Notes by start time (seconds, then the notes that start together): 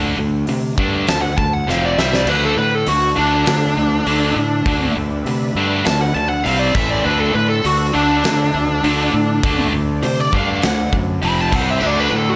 Already playing: D2 D3 A3 D4
0.17 D2 D3 A3
0.47 C3 D3 A3, open hi-hat
0.78 G2 D3 A3 D4, kick
1.07 D2 D3 A3 A5, snare, open hi-hat
1.21 F#5
1.38 D2 D3 A3 A5, kick
1.53 F#5
1.67 F1 F2 C3 F3 F5, snare
1.85 D5
1.98 C2 C3 G3 C4 E5, snare
2.13 D5, snare
2.26 D2 D3 A3 D4 A4 B4 E5, crash
2.45 A4
2.56 A2 D3 A3 B4
2.75 A4
2.87 D2 D3 A3 F#4, open hi-hat
3.15 D2 D3 A3 D4
3.46 D3 A3, snare, open hi-hat
3.77 D2 D3 A3
4.07 D2 D3 A3 D4, open hi-hat
4.36 A2 D3 A3
4.65 D2 D3 A3 D4 B4, kick, open hi-hat
4.96 D2 D3 A3
5.25 C3 D3 A3, open hi-hat
5.55 G2 D3 A3 D4
5.85 D2 D3 A3 A5, snare, open hi-hat
6.01 F#5
6.14 D2 D3 A3 A5
6.29 F#5
6.43 C2 C3 G3 C4 G4 D5 F5, open hi-hat
6.59 D5
6.74 A1 A2 E3 A3 E4 B4 E5, kick, crash
6.90 D5
7.03 D2 D3 A3 D4 A4 B4 E5
7.20 A4
7.33 A2 D3 A3 B4
7.49 A4
7.65 D2 D3 A3 F#4, open hi-hat
7.93 D2 D3 A3 D4
8.24 D3 A3, snare, open hi-hat
8.54 D2 D3 A3
8.84 D2 D3 A3 D4, open hi-hat
9.14 A2 D3 A3
9.43 D2 D3 A3 D4 D5, kick, open hi-hat
9.73 D2 D3 A3
10.03 C3 D3 A3 C5, open hi-hat
10.20 D5
10.33 G2 D3 A3 D4 F5, kick
10.62 D2 D3 A3 F#5, snare, open hi-hat
10.93 F#2 D3 A3, kick
11.22 F1 F2 C3 F3 F4 C5 G5 B5, open hi-hat
11.41 A5
11.51 C2 C3 G3 C4 G4 D5, kick, crash
11.55 F#5
11.71 E5
11.81 D2 D3 A3 D4 F#4 A4 E5
11.86 D5
12.00 B4
12.11 A2 D3 A3
12.16 A4
12.30 F#4